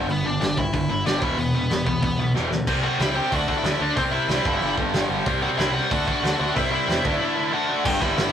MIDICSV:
0, 0, Header, 1, 5, 480
1, 0, Start_track
1, 0, Tempo, 323974
1, 120, Time_signature, 4, 2, 24, 8
1, 12327, End_track
2, 0, Start_track
2, 0, Title_t, "Lead electric guitar"
2, 0, Program_c, 0, 29
2, 156, Note_on_c, 0, 59, 73
2, 175, Note_on_c, 0, 71, 94
2, 363, Note_off_c, 0, 59, 0
2, 385, Note_on_c, 0, 62, 76
2, 401, Note_off_c, 0, 71, 0
2, 401, Note_on_c, 0, 74, 96
2, 821, Note_off_c, 0, 62, 0
2, 866, Note_on_c, 0, 64, 75
2, 875, Note_off_c, 0, 74, 0
2, 882, Note_on_c, 0, 76, 99
2, 1525, Note_off_c, 0, 64, 0
2, 1533, Note_off_c, 0, 76, 0
2, 1573, Note_on_c, 0, 62, 73
2, 1583, Note_on_c, 0, 74, 82
2, 1792, Note_off_c, 0, 62, 0
2, 1794, Note_off_c, 0, 74, 0
2, 1807, Note_on_c, 0, 76, 87
2, 1812, Note_on_c, 0, 64, 56
2, 2028, Note_off_c, 0, 64, 0
2, 2029, Note_off_c, 0, 76, 0
2, 2064, Note_on_c, 0, 71, 78
2, 2066, Note_on_c, 0, 59, 54
2, 3434, Note_off_c, 0, 59, 0
2, 3437, Note_off_c, 0, 71, 0
2, 4195, Note_on_c, 0, 66, 74
2, 4206, Note_on_c, 0, 78, 89
2, 4423, Note_off_c, 0, 66, 0
2, 4453, Note_off_c, 0, 78, 0
2, 4460, Note_on_c, 0, 64, 83
2, 4467, Note_on_c, 0, 76, 101
2, 4676, Note_off_c, 0, 64, 0
2, 4678, Note_on_c, 0, 67, 79
2, 4681, Note_off_c, 0, 76, 0
2, 4686, Note_on_c, 0, 79, 95
2, 4904, Note_off_c, 0, 67, 0
2, 4939, Note_on_c, 0, 66, 79
2, 4949, Note_off_c, 0, 79, 0
2, 4949, Note_on_c, 0, 78, 89
2, 5268, Note_off_c, 0, 66, 0
2, 5294, Note_off_c, 0, 78, 0
2, 5300, Note_on_c, 0, 76, 101
2, 5307, Note_on_c, 0, 64, 68
2, 5629, Note_off_c, 0, 64, 0
2, 5650, Note_on_c, 0, 62, 71
2, 5655, Note_on_c, 0, 74, 81
2, 5665, Note_off_c, 0, 76, 0
2, 5861, Note_off_c, 0, 74, 0
2, 5867, Note_on_c, 0, 72, 92
2, 5873, Note_off_c, 0, 62, 0
2, 5881, Note_on_c, 0, 60, 75
2, 5941, Note_off_c, 0, 72, 0
2, 5955, Note_off_c, 0, 60, 0
2, 6093, Note_on_c, 0, 76, 84
2, 6105, Note_on_c, 0, 64, 65
2, 7012, Note_off_c, 0, 76, 0
2, 7014, Note_off_c, 0, 64, 0
2, 8035, Note_on_c, 0, 78, 101
2, 8055, Note_on_c, 0, 66, 82
2, 8109, Note_off_c, 0, 78, 0
2, 8129, Note_off_c, 0, 66, 0
2, 8265, Note_on_c, 0, 76, 108
2, 8275, Note_on_c, 0, 64, 81
2, 8491, Note_off_c, 0, 76, 0
2, 8497, Note_on_c, 0, 78, 114
2, 8501, Note_off_c, 0, 64, 0
2, 8520, Note_on_c, 0, 66, 84
2, 9663, Note_off_c, 0, 66, 0
2, 9706, Note_on_c, 0, 64, 81
2, 9708, Note_on_c, 0, 76, 101
2, 9747, Note_off_c, 0, 78, 0
2, 9937, Note_off_c, 0, 76, 0
2, 9940, Note_off_c, 0, 64, 0
2, 9959, Note_on_c, 0, 76, 83
2, 9965, Note_on_c, 0, 64, 66
2, 11165, Note_on_c, 0, 78, 105
2, 11172, Note_on_c, 0, 66, 78
2, 11341, Note_off_c, 0, 76, 0
2, 11344, Note_off_c, 0, 64, 0
2, 11614, Note_off_c, 0, 66, 0
2, 11630, Note_off_c, 0, 78, 0
2, 11636, Note_on_c, 0, 79, 107
2, 11638, Note_on_c, 0, 67, 79
2, 11860, Note_off_c, 0, 79, 0
2, 11863, Note_off_c, 0, 67, 0
2, 11877, Note_on_c, 0, 76, 106
2, 11884, Note_on_c, 0, 64, 76
2, 12327, Note_off_c, 0, 64, 0
2, 12327, Note_off_c, 0, 76, 0
2, 12327, End_track
3, 0, Start_track
3, 0, Title_t, "Distorted electric guitar"
3, 0, Program_c, 1, 30
3, 127, Note_on_c, 1, 43, 83
3, 134, Note_on_c, 1, 50, 85
3, 334, Note_off_c, 1, 43, 0
3, 343, Note_off_c, 1, 50, 0
3, 352, Note_on_c, 1, 43, 73
3, 362, Note_on_c, 1, 50, 71
3, 572, Note_off_c, 1, 43, 0
3, 577, Note_off_c, 1, 50, 0
3, 604, Note_on_c, 1, 43, 69
3, 607, Note_on_c, 1, 50, 87
3, 819, Note_off_c, 1, 43, 0
3, 820, Note_off_c, 1, 50, 0
3, 846, Note_on_c, 1, 43, 80
3, 847, Note_on_c, 1, 50, 79
3, 1060, Note_off_c, 1, 43, 0
3, 1060, Note_off_c, 1, 50, 0
3, 1077, Note_on_c, 1, 43, 79
3, 1082, Note_on_c, 1, 50, 80
3, 1295, Note_off_c, 1, 43, 0
3, 1298, Note_off_c, 1, 50, 0
3, 1321, Note_on_c, 1, 43, 79
3, 1329, Note_on_c, 1, 50, 86
3, 1538, Note_off_c, 1, 43, 0
3, 1542, Note_off_c, 1, 50, 0
3, 1562, Note_on_c, 1, 43, 91
3, 1568, Note_on_c, 1, 50, 91
3, 1575, Note_on_c, 1, 55, 94
3, 1788, Note_off_c, 1, 43, 0
3, 1791, Note_off_c, 1, 50, 0
3, 1794, Note_off_c, 1, 55, 0
3, 1797, Note_on_c, 1, 40, 94
3, 1805, Note_on_c, 1, 47, 97
3, 1810, Note_on_c, 1, 52, 96
3, 2020, Note_off_c, 1, 40, 0
3, 2029, Note_off_c, 1, 47, 0
3, 2032, Note_off_c, 1, 52, 0
3, 2038, Note_on_c, 1, 40, 82
3, 2049, Note_on_c, 1, 47, 94
3, 2256, Note_off_c, 1, 40, 0
3, 2262, Note_off_c, 1, 47, 0
3, 2287, Note_on_c, 1, 40, 64
3, 2292, Note_on_c, 1, 47, 71
3, 2501, Note_off_c, 1, 40, 0
3, 2504, Note_off_c, 1, 47, 0
3, 2519, Note_on_c, 1, 40, 70
3, 2529, Note_on_c, 1, 47, 76
3, 2737, Note_off_c, 1, 40, 0
3, 2742, Note_off_c, 1, 47, 0
3, 2758, Note_on_c, 1, 40, 77
3, 2765, Note_on_c, 1, 47, 75
3, 2977, Note_off_c, 1, 40, 0
3, 2980, Note_off_c, 1, 47, 0
3, 3001, Note_on_c, 1, 40, 68
3, 3010, Note_on_c, 1, 47, 84
3, 3219, Note_off_c, 1, 40, 0
3, 3223, Note_off_c, 1, 47, 0
3, 3245, Note_on_c, 1, 40, 74
3, 3248, Note_on_c, 1, 47, 80
3, 3461, Note_off_c, 1, 40, 0
3, 3462, Note_off_c, 1, 47, 0
3, 3479, Note_on_c, 1, 40, 90
3, 3487, Note_on_c, 1, 47, 89
3, 3493, Note_on_c, 1, 52, 97
3, 3697, Note_off_c, 1, 40, 0
3, 3703, Note_off_c, 1, 47, 0
3, 3714, Note_off_c, 1, 52, 0
3, 3715, Note_on_c, 1, 40, 72
3, 3721, Note_on_c, 1, 47, 79
3, 3936, Note_off_c, 1, 40, 0
3, 3939, Note_off_c, 1, 47, 0
3, 3956, Note_on_c, 1, 48, 104
3, 3965, Note_on_c, 1, 55, 101
3, 3971, Note_on_c, 1, 60, 103
3, 4172, Note_off_c, 1, 60, 0
3, 4182, Note_off_c, 1, 55, 0
3, 4190, Note_on_c, 1, 60, 87
3, 4191, Note_off_c, 1, 48, 0
3, 4200, Note_on_c, 1, 55, 75
3, 4209, Note_on_c, 1, 48, 74
3, 4410, Note_off_c, 1, 48, 0
3, 4421, Note_off_c, 1, 55, 0
3, 4428, Note_on_c, 1, 48, 94
3, 4429, Note_off_c, 1, 60, 0
3, 4439, Note_on_c, 1, 55, 92
3, 4446, Note_on_c, 1, 60, 107
3, 4648, Note_off_c, 1, 60, 0
3, 4659, Note_off_c, 1, 55, 0
3, 4665, Note_off_c, 1, 48, 0
3, 4666, Note_on_c, 1, 60, 97
3, 4677, Note_on_c, 1, 55, 81
3, 4683, Note_on_c, 1, 48, 76
3, 4901, Note_off_c, 1, 60, 0
3, 4906, Note_off_c, 1, 48, 0
3, 4907, Note_off_c, 1, 55, 0
3, 4912, Note_on_c, 1, 50, 94
3, 4919, Note_on_c, 1, 57, 89
3, 4925, Note_on_c, 1, 62, 105
3, 5142, Note_off_c, 1, 62, 0
3, 5148, Note_off_c, 1, 57, 0
3, 5159, Note_off_c, 1, 50, 0
3, 5160, Note_on_c, 1, 62, 97
3, 5166, Note_on_c, 1, 57, 82
3, 5177, Note_on_c, 1, 50, 79
3, 5378, Note_off_c, 1, 50, 0
3, 5386, Note_off_c, 1, 57, 0
3, 5391, Note_off_c, 1, 62, 0
3, 5396, Note_on_c, 1, 50, 93
3, 5404, Note_on_c, 1, 57, 96
3, 5408, Note_on_c, 1, 62, 94
3, 5616, Note_off_c, 1, 62, 0
3, 5627, Note_off_c, 1, 57, 0
3, 5633, Note_on_c, 1, 62, 93
3, 5634, Note_off_c, 1, 50, 0
3, 5645, Note_on_c, 1, 57, 78
3, 5652, Note_on_c, 1, 50, 79
3, 5865, Note_off_c, 1, 62, 0
3, 5870, Note_off_c, 1, 50, 0
3, 5871, Note_off_c, 1, 57, 0
3, 5876, Note_on_c, 1, 48, 98
3, 5889, Note_on_c, 1, 55, 94
3, 5889, Note_on_c, 1, 60, 100
3, 6097, Note_off_c, 1, 60, 0
3, 6107, Note_off_c, 1, 55, 0
3, 6115, Note_on_c, 1, 60, 84
3, 6116, Note_off_c, 1, 48, 0
3, 6125, Note_on_c, 1, 55, 77
3, 6134, Note_on_c, 1, 48, 78
3, 6330, Note_off_c, 1, 48, 0
3, 6342, Note_off_c, 1, 55, 0
3, 6348, Note_on_c, 1, 48, 91
3, 6349, Note_off_c, 1, 60, 0
3, 6360, Note_on_c, 1, 55, 91
3, 6367, Note_on_c, 1, 60, 102
3, 6582, Note_off_c, 1, 48, 0
3, 6588, Note_off_c, 1, 55, 0
3, 6590, Note_on_c, 1, 43, 96
3, 6592, Note_off_c, 1, 60, 0
3, 6602, Note_on_c, 1, 50, 97
3, 6609, Note_on_c, 1, 55, 109
3, 6808, Note_off_c, 1, 55, 0
3, 6817, Note_off_c, 1, 50, 0
3, 6826, Note_off_c, 1, 43, 0
3, 6826, Note_on_c, 1, 55, 94
3, 6834, Note_on_c, 1, 50, 90
3, 6844, Note_on_c, 1, 43, 83
3, 7051, Note_off_c, 1, 43, 0
3, 7062, Note_off_c, 1, 50, 0
3, 7065, Note_off_c, 1, 55, 0
3, 7068, Note_on_c, 1, 43, 86
3, 7080, Note_on_c, 1, 50, 98
3, 7083, Note_on_c, 1, 55, 94
3, 7288, Note_off_c, 1, 55, 0
3, 7298, Note_off_c, 1, 50, 0
3, 7304, Note_off_c, 1, 43, 0
3, 7306, Note_on_c, 1, 55, 100
3, 7316, Note_on_c, 1, 50, 94
3, 7321, Note_on_c, 1, 43, 82
3, 7523, Note_off_c, 1, 43, 0
3, 7530, Note_off_c, 1, 50, 0
3, 7540, Note_on_c, 1, 43, 87
3, 7541, Note_off_c, 1, 55, 0
3, 7548, Note_on_c, 1, 50, 84
3, 7559, Note_on_c, 1, 55, 97
3, 7772, Note_off_c, 1, 55, 0
3, 7776, Note_off_c, 1, 50, 0
3, 7779, Note_off_c, 1, 43, 0
3, 7782, Note_on_c, 1, 48, 102
3, 7789, Note_on_c, 1, 55, 108
3, 7795, Note_on_c, 1, 60, 107
3, 8008, Note_off_c, 1, 60, 0
3, 8018, Note_off_c, 1, 55, 0
3, 8026, Note_off_c, 1, 48, 0
3, 8026, Note_on_c, 1, 60, 93
3, 8036, Note_on_c, 1, 55, 73
3, 8043, Note_on_c, 1, 48, 71
3, 8251, Note_off_c, 1, 48, 0
3, 8253, Note_off_c, 1, 55, 0
3, 8265, Note_off_c, 1, 60, 0
3, 8269, Note_on_c, 1, 48, 88
3, 8271, Note_on_c, 1, 55, 97
3, 8283, Note_on_c, 1, 60, 99
3, 8492, Note_off_c, 1, 60, 0
3, 8498, Note_off_c, 1, 55, 0
3, 8502, Note_off_c, 1, 48, 0
3, 8510, Note_on_c, 1, 60, 88
3, 8515, Note_on_c, 1, 55, 77
3, 8520, Note_on_c, 1, 48, 78
3, 8744, Note_off_c, 1, 60, 0
3, 8745, Note_off_c, 1, 48, 0
3, 8746, Note_off_c, 1, 55, 0
3, 8751, Note_on_c, 1, 50, 98
3, 8763, Note_on_c, 1, 57, 103
3, 8763, Note_on_c, 1, 62, 111
3, 8976, Note_off_c, 1, 62, 0
3, 8984, Note_off_c, 1, 57, 0
3, 8990, Note_off_c, 1, 50, 0
3, 8993, Note_on_c, 1, 62, 87
3, 9002, Note_on_c, 1, 57, 95
3, 9008, Note_on_c, 1, 50, 86
3, 9210, Note_off_c, 1, 50, 0
3, 9220, Note_off_c, 1, 57, 0
3, 9224, Note_off_c, 1, 62, 0
3, 9228, Note_on_c, 1, 50, 85
3, 9237, Note_on_c, 1, 57, 97
3, 9242, Note_on_c, 1, 62, 101
3, 9458, Note_off_c, 1, 62, 0
3, 9471, Note_off_c, 1, 57, 0
3, 9475, Note_off_c, 1, 50, 0
3, 9476, Note_on_c, 1, 62, 99
3, 9488, Note_on_c, 1, 57, 80
3, 9492, Note_on_c, 1, 50, 81
3, 9706, Note_off_c, 1, 62, 0
3, 9708, Note_off_c, 1, 50, 0
3, 9712, Note_off_c, 1, 57, 0
3, 9714, Note_on_c, 1, 48, 100
3, 9724, Note_on_c, 1, 55, 99
3, 9735, Note_on_c, 1, 60, 107
3, 9934, Note_off_c, 1, 60, 0
3, 9942, Note_off_c, 1, 55, 0
3, 9950, Note_off_c, 1, 48, 0
3, 9951, Note_on_c, 1, 60, 96
3, 9960, Note_on_c, 1, 55, 88
3, 9968, Note_on_c, 1, 48, 75
3, 10179, Note_off_c, 1, 48, 0
3, 10189, Note_off_c, 1, 55, 0
3, 10194, Note_off_c, 1, 60, 0
3, 10197, Note_on_c, 1, 48, 90
3, 10206, Note_on_c, 1, 55, 108
3, 10212, Note_on_c, 1, 60, 112
3, 10419, Note_off_c, 1, 48, 0
3, 10425, Note_on_c, 1, 50, 89
3, 10429, Note_off_c, 1, 55, 0
3, 10434, Note_off_c, 1, 60, 0
3, 10435, Note_on_c, 1, 57, 99
3, 10448, Note_on_c, 1, 62, 105
3, 10652, Note_off_c, 1, 62, 0
3, 10663, Note_off_c, 1, 57, 0
3, 10668, Note_off_c, 1, 50, 0
3, 10669, Note_on_c, 1, 62, 83
3, 10681, Note_on_c, 1, 57, 84
3, 10686, Note_on_c, 1, 50, 82
3, 10896, Note_off_c, 1, 50, 0
3, 10902, Note_off_c, 1, 57, 0
3, 10913, Note_on_c, 1, 50, 84
3, 10914, Note_off_c, 1, 62, 0
3, 10920, Note_on_c, 1, 57, 92
3, 10931, Note_on_c, 1, 62, 106
3, 11136, Note_off_c, 1, 62, 0
3, 11147, Note_off_c, 1, 57, 0
3, 11154, Note_on_c, 1, 62, 101
3, 11155, Note_off_c, 1, 50, 0
3, 11165, Note_on_c, 1, 57, 93
3, 11173, Note_on_c, 1, 50, 86
3, 11367, Note_off_c, 1, 50, 0
3, 11375, Note_off_c, 1, 57, 0
3, 11385, Note_off_c, 1, 62, 0
3, 11385, Note_on_c, 1, 50, 83
3, 11393, Note_on_c, 1, 57, 95
3, 11403, Note_on_c, 1, 62, 95
3, 11614, Note_off_c, 1, 50, 0
3, 11623, Note_off_c, 1, 57, 0
3, 11623, Note_on_c, 1, 43, 91
3, 11628, Note_off_c, 1, 62, 0
3, 11631, Note_on_c, 1, 50, 106
3, 11637, Note_on_c, 1, 55, 118
3, 11848, Note_off_c, 1, 50, 0
3, 11856, Note_off_c, 1, 55, 0
3, 11862, Note_on_c, 1, 55, 93
3, 11866, Note_on_c, 1, 50, 88
3, 11871, Note_off_c, 1, 43, 0
3, 11877, Note_on_c, 1, 43, 65
3, 12090, Note_off_c, 1, 50, 0
3, 12095, Note_off_c, 1, 43, 0
3, 12101, Note_on_c, 1, 43, 76
3, 12108, Note_off_c, 1, 55, 0
3, 12108, Note_on_c, 1, 50, 89
3, 12114, Note_on_c, 1, 55, 89
3, 12327, Note_off_c, 1, 43, 0
3, 12327, Note_off_c, 1, 50, 0
3, 12327, Note_off_c, 1, 55, 0
3, 12327, End_track
4, 0, Start_track
4, 0, Title_t, "Picked electric bass"
4, 0, Program_c, 2, 34
4, 109, Note_on_c, 2, 31, 93
4, 324, Note_off_c, 2, 31, 0
4, 344, Note_on_c, 2, 31, 86
4, 561, Note_off_c, 2, 31, 0
4, 590, Note_on_c, 2, 31, 97
4, 804, Note_off_c, 2, 31, 0
4, 850, Note_on_c, 2, 31, 88
4, 1056, Note_off_c, 2, 31, 0
4, 1092, Note_on_c, 2, 31, 79
4, 1297, Note_off_c, 2, 31, 0
4, 1310, Note_on_c, 2, 31, 100
4, 1525, Note_off_c, 2, 31, 0
4, 1556, Note_on_c, 2, 31, 88
4, 1768, Note_off_c, 2, 31, 0
4, 1804, Note_on_c, 2, 28, 85
4, 2013, Note_off_c, 2, 28, 0
4, 2034, Note_on_c, 2, 28, 93
4, 2248, Note_off_c, 2, 28, 0
4, 2272, Note_on_c, 2, 28, 85
4, 2487, Note_off_c, 2, 28, 0
4, 2520, Note_on_c, 2, 28, 94
4, 2731, Note_off_c, 2, 28, 0
4, 2762, Note_on_c, 2, 28, 82
4, 2973, Note_off_c, 2, 28, 0
4, 3000, Note_on_c, 2, 28, 88
4, 3211, Note_off_c, 2, 28, 0
4, 3242, Note_on_c, 2, 35, 96
4, 3453, Note_off_c, 2, 35, 0
4, 3485, Note_on_c, 2, 28, 86
4, 3694, Note_off_c, 2, 28, 0
4, 3712, Note_on_c, 2, 38, 86
4, 3927, Note_off_c, 2, 38, 0
4, 3956, Note_on_c, 2, 36, 88
4, 4258, Note_off_c, 2, 36, 0
4, 4428, Note_on_c, 2, 37, 93
4, 4732, Note_off_c, 2, 37, 0
4, 4920, Note_on_c, 2, 38, 87
4, 5220, Note_off_c, 2, 38, 0
4, 5386, Note_on_c, 2, 38, 96
4, 5541, Note_off_c, 2, 38, 0
4, 5630, Note_on_c, 2, 38, 92
4, 5784, Note_off_c, 2, 38, 0
4, 5879, Note_on_c, 2, 36, 95
4, 6179, Note_off_c, 2, 36, 0
4, 6339, Note_on_c, 2, 36, 91
4, 6497, Note_off_c, 2, 36, 0
4, 6594, Note_on_c, 2, 31, 90
4, 6747, Note_off_c, 2, 31, 0
4, 6829, Note_on_c, 2, 31, 92
4, 7132, Note_off_c, 2, 31, 0
4, 7302, Note_on_c, 2, 31, 88
4, 7459, Note_off_c, 2, 31, 0
4, 7549, Note_on_c, 2, 31, 89
4, 7704, Note_off_c, 2, 31, 0
4, 7796, Note_on_c, 2, 36, 97
4, 8098, Note_off_c, 2, 36, 0
4, 8270, Note_on_c, 2, 36, 96
4, 8573, Note_off_c, 2, 36, 0
4, 8756, Note_on_c, 2, 38, 87
4, 9058, Note_off_c, 2, 38, 0
4, 9231, Note_on_c, 2, 38, 94
4, 9385, Note_off_c, 2, 38, 0
4, 9481, Note_on_c, 2, 38, 98
4, 9632, Note_off_c, 2, 38, 0
4, 9724, Note_on_c, 2, 36, 98
4, 10023, Note_off_c, 2, 36, 0
4, 10199, Note_on_c, 2, 40, 102
4, 10350, Note_off_c, 2, 40, 0
4, 10443, Note_on_c, 2, 38, 91
4, 10593, Note_off_c, 2, 38, 0
4, 11634, Note_on_c, 2, 31, 98
4, 11803, Note_off_c, 2, 31, 0
4, 11872, Note_on_c, 2, 31, 93
4, 12042, Note_off_c, 2, 31, 0
4, 12106, Note_on_c, 2, 31, 102
4, 12278, Note_off_c, 2, 31, 0
4, 12327, End_track
5, 0, Start_track
5, 0, Title_t, "Drums"
5, 128, Note_on_c, 9, 46, 55
5, 276, Note_off_c, 9, 46, 0
5, 608, Note_on_c, 9, 46, 63
5, 621, Note_on_c, 9, 38, 108
5, 756, Note_off_c, 9, 46, 0
5, 769, Note_off_c, 9, 38, 0
5, 851, Note_on_c, 9, 36, 93
5, 1000, Note_off_c, 9, 36, 0
5, 1091, Note_on_c, 9, 36, 115
5, 1091, Note_on_c, 9, 46, 61
5, 1239, Note_off_c, 9, 36, 0
5, 1239, Note_off_c, 9, 46, 0
5, 1569, Note_on_c, 9, 46, 64
5, 1583, Note_on_c, 9, 38, 120
5, 1717, Note_off_c, 9, 46, 0
5, 1731, Note_off_c, 9, 38, 0
5, 1806, Note_on_c, 9, 36, 106
5, 1954, Note_off_c, 9, 36, 0
5, 2046, Note_on_c, 9, 46, 55
5, 2194, Note_off_c, 9, 46, 0
5, 2522, Note_on_c, 9, 46, 55
5, 2536, Note_on_c, 9, 38, 114
5, 2671, Note_off_c, 9, 46, 0
5, 2684, Note_off_c, 9, 38, 0
5, 2764, Note_on_c, 9, 36, 95
5, 2912, Note_off_c, 9, 36, 0
5, 3001, Note_on_c, 9, 36, 113
5, 3001, Note_on_c, 9, 46, 51
5, 3149, Note_off_c, 9, 36, 0
5, 3149, Note_off_c, 9, 46, 0
5, 3493, Note_on_c, 9, 38, 71
5, 3642, Note_off_c, 9, 38, 0
5, 3729, Note_on_c, 9, 38, 89
5, 3877, Note_off_c, 9, 38, 0
5, 3961, Note_on_c, 9, 36, 109
5, 3964, Note_on_c, 9, 49, 118
5, 4109, Note_off_c, 9, 36, 0
5, 4112, Note_off_c, 9, 49, 0
5, 4437, Note_on_c, 9, 46, 64
5, 4450, Note_on_c, 9, 38, 111
5, 4585, Note_off_c, 9, 46, 0
5, 4599, Note_off_c, 9, 38, 0
5, 4919, Note_on_c, 9, 46, 65
5, 4920, Note_on_c, 9, 36, 106
5, 5067, Note_off_c, 9, 46, 0
5, 5068, Note_off_c, 9, 36, 0
5, 5159, Note_on_c, 9, 36, 84
5, 5307, Note_off_c, 9, 36, 0
5, 5390, Note_on_c, 9, 46, 64
5, 5403, Note_on_c, 9, 38, 116
5, 5538, Note_off_c, 9, 46, 0
5, 5551, Note_off_c, 9, 38, 0
5, 5877, Note_on_c, 9, 46, 64
5, 5879, Note_on_c, 9, 36, 113
5, 6025, Note_off_c, 9, 46, 0
5, 6028, Note_off_c, 9, 36, 0
5, 6352, Note_on_c, 9, 46, 63
5, 6365, Note_on_c, 9, 38, 112
5, 6500, Note_off_c, 9, 46, 0
5, 6513, Note_off_c, 9, 38, 0
5, 6597, Note_on_c, 9, 36, 115
5, 6745, Note_off_c, 9, 36, 0
5, 6833, Note_on_c, 9, 46, 56
5, 6981, Note_off_c, 9, 46, 0
5, 7075, Note_on_c, 9, 36, 88
5, 7223, Note_off_c, 9, 36, 0
5, 7311, Note_on_c, 9, 46, 61
5, 7324, Note_on_c, 9, 38, 127
5, 7459, Note_off_c, 9, 46, 0
5, 7472, Note_off_c, 9, 38, 0
5, 7797, Note_on_c, 9, 36, 122
5, 7802, Note_on_c, 9, 46, 60
5, 7946, Note_off_c, 9, 36, 0
5, 7950, Note_off_c, 9, 46, 0
5, 8274, Note_on_c, 9, 46, 63
5, 8288, Note_on_c, 9, 38, 116
5, 8422, Note_off_c, 9, 46, 0
5, 8436, Note_off_c, 9, 38, 0
5, 8760, Note_on_c, 9, 36, 114
5, 8760, Note_on_c, 9, 46, 59
5, 8908, Note_off_c, 9, 36, 0
5, 8908, Note_off_c, 9, 46, 0
5, 9002, Note_on_c, 9, 36, 93
5, 9151, Note_off_c, 9, 36, 0
5, 9249, Note_on_c, 9, 46, 65
5, 9262, Note_on_c, 9, 38, 117
5, 9397, Note_off_c, 9, 46, 0
5, 9411, Note_off_c, 9, 38, 0
5, 9726, Note_on_c, 9, 36, 110
5, 9732, Note_on_c, 9, 46, 66
5, 9874, Note_off_c, 9, 36, 0
5, 9881, Note_off_c, 9, 46, 0
5, 10213, Note_on_c, 9, 46, 63
5, 10227, Note_on_c, 9, 38, 109
5, 10361, Note_off_c, 9, 46, 0
5, 10375, Note_off_c, 9, 38, 0
5, 10445, Note_on_c, 9, 36, 116
5, 10593, Note_off_c, 9, 36, 0
5, 11632, Note_on_c, 9, 49, 126
5, 11638, Note_on_c, 9, 36, 123
5, 11780, Note_off_c, 9, 49, 0
5, 11786, Note_off_c, 9, 36, 0
5, 11876, Note_on_c, 9, 36, 98
5, 12024, Note_off_c, 9, 36, 0
5, 12107, Note_on_c, 9, 46, 68
5, 12120, Note_on_c, 9, 38, 116
5, 12255, Note_off_c, 9, 46, 0
5, 12268, Note_off_c, 9, 38, 0
5, 12327, End_track
0, 0, End_of_file